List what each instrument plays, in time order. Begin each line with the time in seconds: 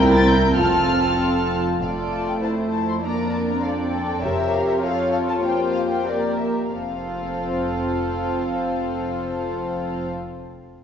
Already playing: cello section C2, double bass section C2, viola section C4 E4, violin section A#4 G5
0.12 violin section A6
0.27 violin section G6
0.57 double bass section F1, cello section F2, viola section C4 F4, violin section A4 A5 F6
1.81 double bass section F1, cello section F2, viola section A3 F4, violin section A4 D5 F5
2.10 violin section A5
2.27 violin section G5
2.42 viola section E4, violin section C5 A5
2.72 violin section A5
2.89 violin section C6
3.03 viola section A#3 D4, violin section A#4 D5 A#5
3.32 violin section A5
3.49 violin section A#5
3.62 viola section C4, violin section A4 D5 F5
3.92 violin section G5
4.21 double bass section F1, cello section F2, viola section G4, violin section A#4 C#5 E5
4.53 violin section F5
4.67 violin section E5
4.82 viola section F4, violin section A4 C#5 F5
5.11 violin section F5
5.29 violin section A5
5.42 viola section A#3, violin section G4 C5 G5
5.73 violin section F5
5.90 violin section G5
6.06 viola section A#3 G4, violin section A#4 D5
6.38 violin section E5
6.69 double bass section F1, cello section F2, viola section C4 F4, violin section A4 C5 F5